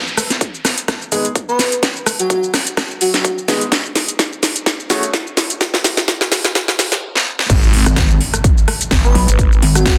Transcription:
0.07 shaker
0.17 cross-stick, open hi-hat, shaker
0.30 snare, closed hi-hat, shaker
0.41 kick, closed hi-hat, shaker
0.55 shaker
0.65 cross-stick, snare, open hi-hat, shaker
0.78 closed hi-hat, shaker
0.88 kick, cross-stick, snare, closed hi-hat, shaker
1.02 shaker
1.12 G#3 B3 D#4 G#4, open hi-hat, shaker
1.25 closed hi-hat, shaker
1.36 kick, closed hi-hat, shaker
1.48 B4, shaker
1.59 snare, open hi-hat, shaker
1.72 closed hi-hat, shaker
1.83 kick, snare, closed hi-hat, shaker
1.96 shaker
2.06 cross-stick, open hi-hat, shaker
2.19 F#4, closed hi-hat, shaker
2.30 F#4, kick, closed hi-hat, shaker
2.44 shaker
2.54 cross-stick, snare, open hi-hat, shaker
2.67 closed hi-hat, shaker
2.77 kick, cross-stick, snare, closed hi-hat, shaker
2.91 shaker
3.01 F#4, open hi-hat, shaker
3.14 F#4, snare, closed hi-hat, shaker
3.25 kick, closed hi-hat, shaker
3.38 shaker
3.48 G#3 B3 D#4 G#4, snare, open hi-hat, shaker
3.61 closed hi-hat, shaker
3.72 kick, snare, closed hi-hat, shaker
3.85 shaker
3.96 snare, open hi-hat, shaker
4.08 closed hi-hat, shaker
4.19 kick, snare, closed hi-hat, shaker
4.33 shaker
4.43 snare, open hi-hat, shaker
4.56 closed hi-hat, shaker
4.66 kick, snare, closed hi-hat, shaker
4.80 shaker
4.90 A3 C#4 F#4 G#4, snare, open hi-hat, shaker
5.03 closed hi-hat, shaker
5.14 kick, snare, closed hi-hat, shaker
5.27 shaker
5.37 snare, open hi-hat, shaker
5.50 closed hi-hat, shaker
5.61 kick, snare, closed hi-hat, shaker
5.74 snare, shaker
5.84 snare, open hi-hat, shaker
5.97 snare, closed hi-hat, shaker
6.08 kick, snare, closed hi-hat, shaker
6.21 snare, shaker
6.32 snare, open hi-hat, shaker
6.45 snare, closed hi-hat, shaker
6.55 kick, snare, closed hi-hat, shaker
6.68 snare, closed hi-hat, shaker
6.79 snare, open hi-hat, shaker
6.92 snare, closed hi-hat, shaker
7.15 snare
7.39 snare
7.50 G#1, kick, closed hi-hat, crash, impact, shaker
7.63 shaker
7.73 open hi-hat
7.86 G#1, cross-stick, closed hi-hat, shaker
7.96 kick, snare, closed hi-hat, shaker
8.10 shaker
8.21 open hi-hat
8.34 cross-stick, closed hi-hat, shaker
8.44 kick, closed hi-hat, shaker
8.58 shaker
8.68 cross-stick, open hi-hat
8.81 closed hi-hat, shaker
8.91 G#1, kick, snare, closed hi-hat, shaker
9.04 B4, shaker
9.15 B1, open hi-hat
9.28 G#1, closed hi-hat, shaker
9.39 kick, closed hi-hat, shaker
9.52 shaker
9.62 G#1, open hi-hat
9.75 F#4, cross-stick, closed hi-hat, shaker
9.86 F#4, kick, snare, closed hi-hat, shaker

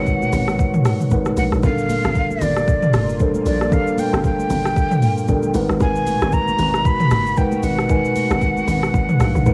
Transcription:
Already playing: G#1 A#2 B2 G#3 D#4 F#4 A#4 B4 C#5 F#5
0.06 kick, shaker
0.22 high conga, shaker
0.33 G#1, open hi-hat, low conga, shaker
0.48 cross-stick, high conga, shaker
0.58 kick, low conga, shaker
0.74 mid tom, shaker
0.85 cross-stick, open hi-hat, high conga, shaker
1.00 mid tom, shaker
1.11 G#1 G#3 D#4 A#4 B4 F#5, kick, shaker
1.25 cross-stick, high conga, shaker
1.37 A#1 F#5, open hi-hat, high conga, shaker
1.52 A#1, cross-stick, shaker
1.63 G1 A#2 G3 A#3 D4 F4 A4 A#4 F5, kick, low conga, shaker
1.78 shaker
1.89 open hi-hat, high conga, shaker
2.04 G1, cross-stick, high conga, shaker
2.15 kick, shaker
2.31 high conga, shaker
2.41 G1 D5, open hi-hat, low conga, shaker
2.56 cross-stick, high conga, shaker
2.68 kick, shaker
2.82 mid tom, shaker
2.93 F1, cross-stick, open hi-hat, high conga, shaker
3.09 shaker
3.20 G3 D4 A4 A#4 C5, kick, shaker
3.34 high conga, shaker
3.45 A#1 D5, open hi-hat, high conga, shaker
3.61 cross-stick, shaker
3.71 G3 D4 A4 A#4 F5, kick, low conga, shaker
3.87 shaker
3.98 G5, open hi-hat, high conga, shaker
4.13 G1, cross-stick, high conga, shaker
4.24 G5, kick, shaker
4.39 high conga, shaker
4.50 G1, open hi-hat, low conga, shaker
4.65 cross-stick, high conga, shaker
4.76 kick, shaker
4.91 mid tom, shaker
5.02 open hi-hat, high conga, shaker
5.18 shaker
5.28 G1 G3 D4 A4 A#4 G5, kick, shaker
5.43 high conga, shaker
5.54 G#1 A#2 B2 G#3 D#4 F#4 A#4 B4 F#5, open hi-hat, high conga, shaker
5.70 G#1, cross-stick, shaker
5.80 G#1 G#5, kick, low conga, shaker
5.96 shaker
6.07 open hi-hat, high conga, shaker
6.22 G#1, cross-stick, high conga, shaker
6.32 A#5, kick, shaker
6.48 high conga, shaker
6.59 G#1, open hi-hat, low conga, shaker
6.74 cross-stick, high conga, shaker
6.85 B5, kick, shaker
7.00 mid tom, shaker
7.11 F#1, cross-stick, open hi-hat, high conga, shaker
7.27 shaker
7.37 G#3 D#4 A#4 B4 F#5 G5, kick, shaker
7.52 high conga, shaker
7.63 G#1 B3 F#5, open hi-hat, high conga, shaker
7.79 cross-stick, shaker
7.89 G#3 D#4 A#4 B4 G#5, kick, low conga, shaker
8.05 shaker
8.16 open hi-hat, high conga, shaker
8.31 G#1, cross-stick, high conga, shaker
8.41 kick, shaker
8.57 high conga, shaker
8.67 G#1, open hi-hat, low conga, shaker
8.83 cross-stick, shaker
8.94 G#1, kick, shaker
9.09 mid tom, shaker
9.20 A#1 F5, cross-stick, open hi-hat, high conga, shaker
9.35 A#1, mid tom, shaker
9.46 G#1 G#3 D#4 A#4 B4 F#5, kick, shaker

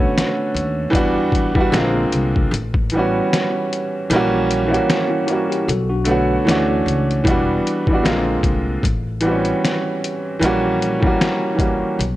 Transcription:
Already playing: D3 A3 B3 C#4 F#4
0.18 snare, closed hi-hat
0.54 D#2, closed hi-hat
0.90 E2 E3 G3 B3, kick
0.95 D4 F#4, closed hi-hat
1.32 kick, closed hi-hat
1.54 E3 G3 B3, kick
1.59 D4 F#4
1.70 A#1 D3 G#3 A#3, snare
1.74 C4 F4, closed hi-hat
2.12 C2, closed hi-hat
2.36 kick
2.51 A1, closed hi-hat
2.74 kick
2.90 E3 G3, closed hi-hat
2.95 B3 C#4 F#4
3.33 snare, closed hi-hat
3.73 closed hi-hat
4.10 A#1 E3 G3 A#3, closed hi-hat
4.14 C#4 F#4
4.51 closed hi-hat
4.66 E3 G3 A#3
4.71 C#4 F#4, closed hi-hat
4.90 snare, closed hi-hat
5.10 C#4 E4
5.26 E3 G3 A#3 F#4, closed hi-hat
5.31 C#4 F#4
5.50 E4 G4, closed hi-hat
5.68 B1 F#4 A4, closed hi-hat
5.89 D4 F#4
6.04 D3 A3 B3, closed hi-hat
6.09 F#4 C#5
6.45 D2 E3 A3 C#4, snare
6.49 D4 F#4, closed hi-hat
6.86 C#2, closed hi-hat
7.11 closed hi-hat
7.24 E1 E3 G3 B3, kick, closed hi-hat
7.28 D4 F#4
7.67 closed hi-hat
7.87 E3 G3 B3, kick
7.92 D4 F#4
8.02 A#1 D3 G#3 A#3, snare
8.06 C4 F4, closed hi-hat
8.43 C2, kick, closed hi-hat
8.83 A1, kick, closed hi-hat
9.21 E3 G3 B3, closed hi-hat
9.25 C4 F#4
9.32 C#4
9.45 closed hi-hat
9.65 snare, closed hi-hat
10.04 closed hi-hat
10.40 A#1 E3 G3 A#3, closed hi-hat
10.44 C#4 F#4
10.82 closed hi-hat
11.00 E3 G3 A#3, kick
11.05 C#4 F#4
11.21 snare, closed hi-hat
11.55 E3 G3 A#3
11.59 C#4 F#4, kick, closed hi-hat
11.99 B1, closed hi-hat

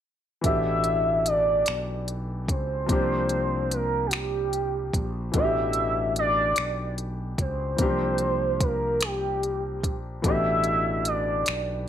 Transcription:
0.41 A1 B2 E3 A3 E5, kick, closed hi-hat
0.46 D4 G4
0.84 closed hi-hat
1.26 D5, closed hi-hat
1.66 B1, finger snap, closed hi-hat
2.08 closed hi-hat
2.48 C#2 C5, kick, closed hi-hat
2.86 C2 F3 A#3 C4, kick, closed hi-hat
2.91 D4 G4
3.29 closed hi-hat
3.71 A#4, closed hi-hat
4.06 F#4
4.11 G4, finger snap, closed hi-hat
4.53 closed hi-hat
4.93 A#1, kick, closed hi-hat
5.32 A1 B2 E3 A3, kick, closed hi-hat
5.37 D4 F4 E5
5.44 G4
5.73 closed hi-hat
6.16 D5, closed hi-hat
6.56 B1, finger snap, closed hi-hat
6.98 closed hi-hat
7.38 C#2 C5, kick, closed hi-hat
7.76 C2 E3 A#3 C4, kick, closed hi-hat
7.81 F3 D4 G4
8.18 closed hi-hat
8.61 A#4, kick, closed hi-hat
9.01 G4, finger snap, closed hi-hat
9.43 closed hi-hat
9.84 A#1, kick, closed hi-hat
10.22 A1 B2 E3 A3 D4, kick, closed hi-hat
10.26 G4 E5
10.64 closed hi-hat
11.05 D5, closed hi-hat
11.46 B1, finger snap, closed hi-hat

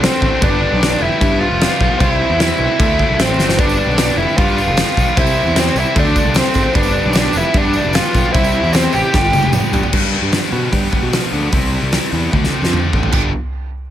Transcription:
Already playing: A4
0.00 D3 F3 A3 C4 D4 F4, snare, crash
0.20 A1 F3 A3 D4 F4, kick
0.39 G1 G2 D3 F3 G3 B3 D4 G4 B4, kick, crash
0.59 G3 B3 D4 G4
0.63 F3
0.72 B1
0.79 G2 D3 F3 G3 B3 D4 G4, snare, crash
0.98 F1 F3 G3 B3 D4 E4 G4
1.20 G2 D3 G3 B3 D4, kick, crash
1.40 G3 B3 D4 F4
1.50 F1
1.59 D3 F3 G3 B3 D4 G4, snare, crash
1.78 B1 F3 G3 B3 D4 G4, kick
1.98 C2 C3 E3 G3 C4 E4 C5, kick, crash
2.19 G3 C4 E4
2.30 E2
2.39 C3 E3 G3 C4 E4, snare, crash
2.59 B1 G3 C4 E4
2.79 D2 D3 F3 A3 D4 F4 A4, kick, crash
2.99 F3 A3 D4, kick
3.09 C2
3.18 A1 D3 F3 A3 C4 D4 F4, snare, crash
3.38 G1 F3 A3 D4 F4, snare
3.49 snare
3.57 G1 G2 D3 F3 G3 B3 D4 G4 B4, kick, tambourine, crash
3.69 tambourine
3.76 F3 G3 B3 D4 G4
3.87 B1
3.91 tambourine
3.97 G2 D3 F3 G3 B3 D4 G4, snare, tambourine, crash
4.16 F1 G3 B3 D4 E4 G4
4.20 F3
4.29 tambourine
4.37 G2 D3 G3 B3 D4 F4, kick, tambourine, crash
4.49 tambourine
4.57 G3 B3 D4, tambourine
4.67 F1
4.76 D3 F3 G3 B3 D4 G4, snare, tambourine, crash
4.88 tambourine
4.95 B1 F3 G3 B3 D4 G4, kick, tambourine
5.08 tambourine
5.15 C2 C3 E3 G3 C4 E4 G4 C5, kick, tambourine, crash
5.27 tambourine
5.36 G3 C4 E4 G4
5.45 E2, tambourine
5.54 C3 E3 G3 C4 E4 G4, snare, tambourine, crash
5.74 C2 G3 C4 E4 G4, tambourine
5.86 tambourine
5.95 D2 D3 F3 A3 D4 F4 A4, kick, tambourine, crash
6.06 tambourine
6.14 F3 A3 D4, kick, tambourine
6.24 C2
6.33 D3 F3 A3 D4 F4, snare, tambourine, crash
6.38 C4
6.44 tambourine
6.54 G#1 F3 A3 D4 F4, kick, tambourine
6.64 tambourine
6.73 G1 G2 D3 F3 G3 B3 D4 G4 B4, kick, tambourine, crash
6.83 tambourine
6.93 F3 G3 B3 D4 G4
7.03 B1, tambourine
7.13 G2 D3 F3 G3 B3 D4 G4, snare, tambourine, crash
7.24 tambourine
7.32 F1 F3 G3 B3 D4 G4, tambourine
7.37 E4
7.43 tambourine
7.53 G2 D3 G3 B3 D4, kick, tambourine, crash
7.63 tambourine
7.73 G3 B3 D4, tambourine
7.84 F1
7.92 D3 F3 G3 B3 D4 F4 G4, snare, tambourine, crash
8.04 tambourine
8.12 B1 F3 G3 B3 D4 G4, kick, tambourine
8.24 tambourine
8.32 C2 C3 E3 G3 C4 E4 G4 C5, kick, tambourine, crash
8.44 tambourine
8.52 G3 C4 E4 G4, tambourine
8.63 E2, tambourine
8.72 C3 E3 G3 C4 E4 G4, snare, tambourine, crash
8.84 tambourine
8.92 A1 G3 C4 E4 G4, tambourine
9.04 tambourine
9.12 G1 G2 D3 F3 G3 B3 D4 F4 G4, kick, snare
9.24 tambourine
9.32 G3 B3 D4, high tom, tambourine
9.43 F1, high tom, tambourine
9.52 D3 F3 G3 B3 D4 G4, mid tom, tambourine
9.71 G2 G3 B3 D4 G4, floor tom, tambourine
9.75 F3
9.83 floor tom, tambourine
9.91 G2 D3 G3 B3 D4, kick, crash
10.11 G3
10.22 G2
10.31 G2 D3 F3 G3 B3 D4, snare, open hi-hat
10.52 B2 B3
10.72 G2 G4, kick, open hi-hat
10.90 G3 B3 D4, kick
11.02 B2
11.10 D3 F3 G3 B3 D4, snare, open hi-hat
11.32 D2 G3 B3 D4
11.52 C2 C3 G3 C4 E4, kick, open hi-hat
11.72 G3
11.82 C2
11.92 C3 E3 G3 C4 E4, snare, open hi-hat
12.12 E2 B3
12.32 D2 D3 F3 A3 D4, kick, high tom
12.44 snare
12.52 F3 A3 C4 D4
12.62 F2, snare
12.72 D3 F3 A3 D4, mid tom
12.92 A1 F3 A3 C4 D4, kick
13.03 floor tom
13.12 G1 G2 D3 F3 G3 B3 D4 G4, kick, floor tom, crash

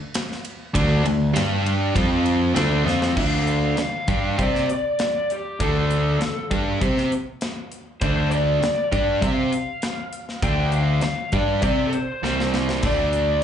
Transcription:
0.14 snare, ride
0.32 snare
0.45 ride
0.74 D2 D3 A3 D4, kick, ride
1.03 D2 D3 A3, ride
1.34 G2 G3 D4 G4, snare, ride
1.66 ride
1.95 F2 F3 C4 F4, kick, ride
2.26 ride
2.55 D2 D3 A3 D4, snare, ride
2.85 F2 F3 C4 F4, snare
3.02 snare
3.17 D2 D3 A3 D4 F5, kick, crash
3.47 closed hi-hat
3.77 F5, muted overdriven electric guitar stroke, muted picked electric bass stroke, snare, closed hi-hat
4.08 G2 G3 D4 G4, kick, closed hi-hat
4.38 C3 C4 G4 C5 D5, kick, closed hi-hat
4.55 snare
4.69 D5, closed hi-hat
4.99 snare, closed hi-hat
5.30 G4, closed hi-hat
5.60 D2 D3 A3 D4 A4, kick, closed hi-hat
5.91 closed hi-hat
6.20 muted picked electric bass stroke, muted overdriven electric guitar stroke, snare, closed hi-hat
6.51 G2 G3 D4 G4, kick, closed hi-hat
6.81 C3 C4 G4 C5, kick, closed hi-hat
6.97 snare
7.12 closed hi-hat
7.41 snare, closed hi-hat
7.72 closed hi-hat
8.01 D2 D3 A3 D4 C5, kick, closed hi-hat
8.31 D5, closed hi-hat
8.61 muted overdriven electric guitar stroke, muted picked electric bass stroke, snare, closed hi-hat
8.92 G2 G3 D4 G4 D5, kick, closed hi-hat
9.21 C3 C4 G4 C5 F5, kick, closed hi-hat
9.53 closed hi-hat
9.82 snare, closed hi-hat
10.13 closed hi-hat
10.29 snare
10.42 D2 D3 A3 D4 G5, kick, closed hi-hat
10.72 F5, closed hi-hat
11.01 muted overdriven electric guitar stroke, muted picked electric bass stroke, snare, closed hi-hat
11.32 G2 G3 D4 G4 D5, kick, closed hi-hat
11.62 C3 C4 G4 C5 D5, kick, closed hi-hat
11.86 A4
11.93 C5, closed hi-hat
12.23 C2 C3 G3 C4, snare
12.40 snare
12.54 snare
12.69 snare
12.83 D2 D3 A3 D4 D5, kick, closed hi-hat, splash
13.13 closed hi-hat

